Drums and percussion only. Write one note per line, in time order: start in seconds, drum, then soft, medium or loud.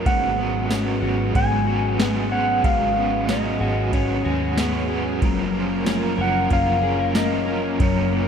0.06 kick loud
0.06 ride medium
0.70 snare loud
0.70 ride medium
0.70 tambourine medium
1.35 kick medium
1.35 ride medium
2.00 snare loud
2.00 ride medium
2.00 tambourine medium
2.64 kick loud
2.64 ride medium
3.29 snare loud
3.29 ride medium
3.29 tambourine medium
3.93 kick medium
3.93 ride medium
4.58 snare loud
4.58 ride medium
4.58 tambourine medium
5.22 kick loud
5.22 ride medium
5.86 snare loud
5.86 ride medium
5.86 tambourine medium
6.50 kick medium
6.50 ride medium
7.15 snare loud
7.15 ride medium
7.15 tambourine medium
7.80 kick loud
7.80 ride medium